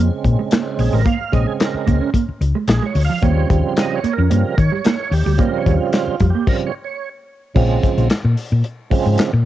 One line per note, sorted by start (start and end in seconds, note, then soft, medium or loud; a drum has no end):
0.00 1.02 C#3 medium
0.00 1.02 G#3 medium
0.00 1.02 C4 medium
0.24 0.35 A#2 loud
0.24 muted clean electric guitar stroke medium
0.24 kick medium
0.24 closed hi-hat medium
0.39 0.47 G#3 medium
0.51 0.61 A#3 medium
0.51 snare loud
0.51 clap loud
0.51 closed hi-hat medium
0.79 0.90 A#1 loud
0.79 0.94 G#4 medium
0.79 muted clean electric guitar stroke soft
0.79 open hi-hat medium
0.93 1.03 A1 medium
0.93 1.01 G#3 medium
0.93 1.07 A#4 medium
1.06 1.15 A#3 loud
1.06 1.34 F5 loud
1.06 kick loud
1.06 closed hi-hat medium
1.21 muted clean electric guitar stroke soft
1.32 1.44 A#1 medium
1.32 2.10 C#3 medium
1.32 2.10 G#3 soft
1.32 1.42 G#3 medium
1.32 2.10 C4 medium
1.32 1.47 D#5 medium
1.32 kick loud
1.32 closed hi-hat medium
1.47 1.53 G#4 medium
1.60 2.10 A#4 medium
1.60 muted clean electric guitar stroke soft
1.60 snare loud
1.60 clap medium
1.60 closed hi-hat medium
1.74 muted fingered electric bass stroke medium
1.87 1.98 C#2 loud
1.87 1.96 A#3 medium
1.87 kick medium
1.87 closed hi-hat medium
2.01 2.09 C#4 medium
2.14 2.23 A#3 medium
2.14 kick medium
2.14 closed hi-hat loud
2.29 muted fingered electric bass stroke soft
2.41 2.52 C#2 medium
2.41 muted clean electric guitar stroke soft
2.41 closed hi-hat medium
2.55 2.63 G#3 loud
2.68 2.79 A#1 medium
2.68 2.87 G#4 medium
2.68 snare loud
2.68 clap loud
2.68 closed hi-hat medium
2.83 2.91 G#3 medium
2.83 3.03 C#5 medium
2.95 3.06 D2 loud
2.95 muted clean electric guitar stroke soft
2.95 open hi-hat medium
3.05 3.23 F5 loud
3.09 3.17 F3 medium
3.22 3.43 D#2 loud
3.22 3.99 C#3 medium
3.22 4.00 F3 medium
3.22 4.00 G3 medium
3.22 3.31 A#3 medium
3.22 4.00 C4 medium
3.22 3.48 C#5 medium
3.22 kick loud
3.22 closed hi-hat medium
3.37 muted clean electric guitar stroke soft
3.50 3.61 D#2 medium
3.50 3.59 G3 medium
3.50 kick loud
3.50 closed hi-hat medium
3.76 3.96 D#5 loud
3.76 muted clean electric guitar stroke soft
3.76 snare medium
3.76 clap medium
3.76 closed hi-hat medium
3.95 4.14 C#5 loud
4.04 4.13 A#3 medium
4.04 muted fingered electric bass stroke soft
4.04 closed hi-hat medium
4.13 4.59 A#4 loud
4.18 4.28 F2 medium
4.18 4.26 C#4 medium
4.30 4.42 G2 loud
4.30 4.55 C#3 soft
4.30 4.55 F3 medium
4.30 4.55 G3 soft
4.30 4.39 A#3 medium
4.30 4.55 C4 medium
4.30 closed hi-hat loud
4.57 4.69 D#3 loud
4.57 5.14 C#5 loud
4.57 muted clean electric guitar stroke soft
4.57 kick loud
4.57 closed hi-hat medium
4.72 4.80 G3 medium
4.84 4.94 A#3 medium
4.84 snare loud
4.84 clap medium
4.84 closed hi-hat loud
5.11 5.23 D#2 medium
5.11 5.41 G4 medium
5.11 muted clean electric guitar stroke soft
5.11 open hi-hat medium
5.26 5.36 D2 loud
5.26 5.34 G3 medium
5.37 6.16 C#3 medium
5.37 6.16 F3 medium
5.37 6.16 G3 medium
5.37 5.48 A#3 loud
5.37 6.16 C4 medium
5.37 5.58 A#4 loud
5.37 kick loud
5.37 closed hi-hat loud
5.54 muted clean electric guitar stroke soft
5.58 5.76 C#5 loud
5.66 5.77 D#2 medium
5.66 5.75 G3 medium
5.66 kick loud
5.66 closed hi-hat medium
5.77 6.26 F4 medium
5.93 muted clean electric guitar stroke soft
5.93 snare medium
5.93 clap medium
5.93 closed hi-hat medium
6.08 muted fingered electric bass stroke medium
6.20 6.32 F2 medium
6.20 6.29 G3 medium
6.20 kick medium
6.20 closed hi-hat medium
6.30 6.49 G4 medium
6.35 6.43 A#3 medium
6.47 6.72 C#3 medium
6.47 6.72 F3 soft
6.47 6.72 G3 soft
6.47 6.72 C4 medium
6.47 6.57 A#4 medium
6.47 kick loud
6.47 crash medium
6.67 6.75 C#5 loud
6.84 7.09 C#5 medium
7.55 7.77 A#1 medium
7.55 8.07 C#3 medium
7.55 8.08 F3 medium
7.55 8.08 G#3 medium
7.55 8.08 C4 loud
7.55 kick loud
7.55 crash medium
7.83 kick loud
7.83 closed hi-hat medium
7.97 8.07 A#1 medium
7.97 closed hi-hat soft
8.10 muted fingered electric bass stroke medium
8.10 snare medium
8.10 clap medium
8.10 closed hi-hat loud
8.24 8.34 A#2 medium
8.37 open hi-hat medium
8.52 8.62 A#2 medium
8.64 closed hi-hat loud
8.90 9.31 C#3 medium
8.90 9.31 F3 medium
8.90 9.31 G#3 medium
8.90 9.32 C4 loud
8.90 muted fingered electric bass stroke soft
8.90 kick medium
8.90 open hi-hat medium
9.06 9.16 G#2 medium
9.18 snare loud
9.18 clap loud
9.18 closed hi-hat loud
9.33 9.43 A#2 loud